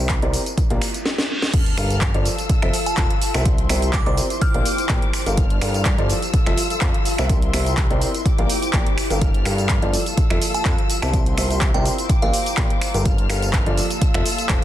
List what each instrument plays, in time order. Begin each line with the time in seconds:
Already playing: analog synth bass C2, upright piano C4 G4 A#4 C5 E5, ambient pad E4
0.09 kick, clap, closed hi-hat, tambourine
0.22 analog synth bass C2, upright piano C4 G4 A#4 C5 D5, closed hi-hat
0.33 open hi-hat, tambourine
0.46 closed hi-hat, tambourine
0.58 kick, closed hi-hat, tambourine, reverse cymbal
0.70 analog synth bass A#1, upright piano A#3 G4 A#4 D5 F5, closed hi-hat
0.82 finger snap, open hi-hat, tambourine
0.94 closed hi-hat, tambourine
1.06 snare
1.18 snare
1.42 snare
1.54 string section A#3 A5 F6, ambient pad F4, kick, closed hi-hat, tambourine, crash, sub drop
1.66 closed hi-hat
1.75 analog synth bass G1, upright piano G3 G4 A4 A#4 F5, ambient pad A5, finger snap, open hi-hat, tambourine
1.90 closed hi-hat, tambourine
2.01 kick, clap, closed hi-hat, tambourine
2.14 analog synth bass G1, upright piano F3 F4 A4 C5 D5, closed hi-hat
2.25 string section A4 F5 E6, open hi-hat, tambourine
2.38 closed hi-hat, tambourine
2.49 kick, closed hi-hat, tambourine
2.62 analog synth bass F1, upright piano F3 F4 A4 C5 E5, finger snap, closed hi-hat
2.73 open hi-hat, tambourine
2.86 synth bell A5, closed hi-hat, tambourine
2.97 analog synth bass F1, upright piano F3 F4 A4 C5 F5, kick, clap, closed hi-hat, tambourine
3.10 closed hi-hat
3.22 open hi-hat, tambourine
3.34 analog synth bass C2, upright piano C4 G4 A#4 C5 E5, finger snap, closed hi-hat, tambourine
3.46 ambient pad E4, string section C5 E5 C6, kick, closed hi-hat
3.58 closed hi-hat
3.69 analog synth bass C2, upright piano C4 G4 A#4 C5 E5, finger snap, open hi-hat, tambourine
3.82 closed hi-hat, tambourine
3.89 ambient pad A#5
3.93 synth bell D6, kick, clap, closed hi-hat, tambourine
4.06 analog synth bass C2, upright piano C4 G4 A#4 C5 D5, synth bell D6, closed hi-hat
4.17 open hi-hat, tambourine
4.30 closed hi-hat, tambourine
4.41 ambient pad G4, string section G5 D6, synth bell F6, kick, closed hi-hat, tambourine
4.54 analog synth bass A#1, upright piano A#3 G4 A#4 D5 F5, closed hi-hat
4.66 open hi-hat, tambourine
4.78 closed hi-hat, tambourine
4.89 analog synth bass A#1, upright piano A#3 G4 A#4 D5 G5, kick, clap, closed hi-hat, tambourine
5.02 closed hi-hat
5.13 finger snap, open hi-hat, tambourine
5.26 analog synth bass G1, upright piano G3 G4 A4 A#4 F5, closed hi-hat, tambourine
5.37 ambient pad F4, string section A5 F6, kick, closed hi-hat, tambourine
5.50 closed hi-hat
5.61 analog synth bass G2, upright piano G3 G4 A4 A#4 F5, finger snap, open hi-hat, tambourine
5.70 ambient pad A5
5.74 closed hi-hat, tambourine
5.85 kick, clap, closed hi-hat, tambourine
5.98 analog synth bass G1, upright piano F3 F4 A4 C5 D5, closed hi-hat
6.09 string section A4 F5 E6, open hi-hat, tambourine
6.22 closed hi-hat, tambourine
6.34 kick, closed hi-hat, tambourine
6.46 analog synth bass F1, upright piano F3 F4 A4 C5 E5, ambient pad E6, finger snap, closed hi-hat
6.58 open hi-hat, tambourine
6.70 closed hi-hat, tambourine
6.81 analog synth bass F2, upright piano F3 F4 A4 C5 F5, kick, clap, closed hi-hat, tambourine
6.94 closed hi-hat
7.05 open hi-hat, tambourine
7.18 analog synth bass C2, upright piano C4 G4 A#4 C5 E5, finger snap, tambourine
7.29 ambient pad E4, string section A#4 E5 C6, kick, closed hi-hat, tambourine
7.42 closed hi-hat
7.53 analog synth bass C2, upright piano C4 G4 A#4 C5 E5, finger snap, open hi-hat, tambourine
7.66 closed hi-hat, tambourine
7.73 ambient pad A#5, clap
7.78 kick, closed hi-hat, tambourine
7.90 analog synth bass C2, upright piano C4 G4 A#4 C5 D5, closed hi-hat
8.01 open hi-hat, tambourine
8.14 closed hi-hat, tambourine
8.25 ambient pad G4, string section G4 G5 D6, kick, closed hi-hat, tambourine
8.38 analog synth bass A#1, upright piano A#3 G4 A#4 D5 F5, closed hi-hat
8.50 open hi-hat, tambourine
8.62 closed hi-hat, tambourine
8.73 analog synth bass A#1, upright piano A#3 G4 A#4 D5 G5, kick, clap, closed hi-hat, tambourine
8.87 closed hi-hat
8.98 finger snap, open hi-hat, tambourine
9.10 analog synth bass G1, upright piano G3 G4 A4 A#4 F5, closed hi-hat, tambourine
9.21 ambient pad F4, string section A5 F6, kick, closed hi-hat
9.34 closed hi-hat
9.45 analog synth bass G2, upright piano G3 G4 A4 A#4 F5, finger snap, open hi-hat, tambourine
9.54 ambient pad A5, closed hi-hat
9.59 tambourine
9.69 kick, clap, closed hi-hat, tambourine
9.82 analog synth bass G1, upright piano F3 F4 A4 C5 D5, closed hi-hat
9.93 string section A4 F5 E6, open hi-hat, tambourine
10.06 closed hi-hat, tambourine
10.17 kick, closed hi-hat, tambourine
10.30 analog synth bass F1, upright piano F3 F4 A4 C5 E5, finger snap, closed hi-hat
10.42 open hi-hat, tambourine
10.54 synth bell A5, closed hi-hat, tambourine
10.65 analog synth bass F2, upright piano F3 F4 A4 C5 F5, kick, clap, closed hi-hat, tambourine
10.78 closed hi-hat
10.90 open hi-hat, tambourine
11.02 analog synth bass C2, upright piano C4 G4 A#4 C5 E5, synth bell A5, finger snap, closed hi-hat, tambourine
11.13 ambient pad E4, string section C5 E5 C6, kick, closed hi-hat, tambourine
11.26 closed hi-hat
11.37 analog synth bass C2, upright piano C4 G4 A#4 C5 E5, finger snap, open hi-hat, tambourine
11.51 closed hi-hat, tambourine
11.57 ambient pad A#5, clap
11.61 kick, closed hi-hat, tambourine
11.74 analog synth bass C2, upright piano C4 G4 A#4 C5 D5, synth bell G5, closed hi-hat
11.85 open hi-hat, tambourine
11.98 closed hi-hat, tambourine
12.09 ambient pad G4, string section G5 D6, kick, closed hi-hat, tambourine
12.22 analog synth bass A#1, upright piano A#3 G4 A#4 D5 F5, synth bell F5, closed hi-hat
12.33 open hi-hat, tambourine
12.46 closed hi-hat, tambourine
12.57 analog synth bass A#1, upright piano A#3 G4 A#4 D5 G5, kick, clap, closed hi-hat, tambourine
12.70 closed hi-hat
12.81 finger snap, open hi-hat, tambourine
12.94 analog synth bass G1, upright piano G3 G4 A4 A#4 F5, closed hi-hat, tambourine
13.06 ambient pad F4, string section A5 F6, kick, closed hi-hat, tambourine
13.18 closed hi-hat
13.29 analog synth bass G1, upright piano G3 G4 A4 A#4 F5, finger snap, open hi-hat, tambourine
13.39 ambient pad A5, closed hi-hat
13.43 tambourine
13.53 kick, clap, closed hi-hat, tambourine
13.66 analog synth bass G1, upright piano F3 F4 A4 C5 D5, closed hi-hat
13.77 string section A4 F5 E6, open hi-hat, tambourine
13.90 closed hi-hat, tambourine
14.02 kick, closed hi-hat, tambourine
14.14 analog synth bass F1, upright piano F3 F4 A4 C5 E5, finger snap, closed hi-hat
14.26 open hi-hat, tambourine
14.38 closed hi-hat, tambourine
14.49 analog synth bass F1, upright piano F3 F4 A4 C5 F5, kick, clap, closed hi-hat, tambourine